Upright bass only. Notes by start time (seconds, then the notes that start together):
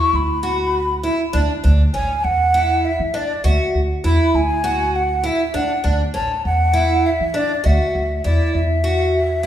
0.13 D2
1.34 D2
1.65 D2
1.94 A1
2.25 E2
3.00 E3
3.44 D2
3.75 D2
4.04 E2
4.34 D2
5.54 D2
5.85 D2
6.15 A1
6.45 E2
7.20 E3
7.65 D2
7.95 D2
8.25 E2
8.55 E2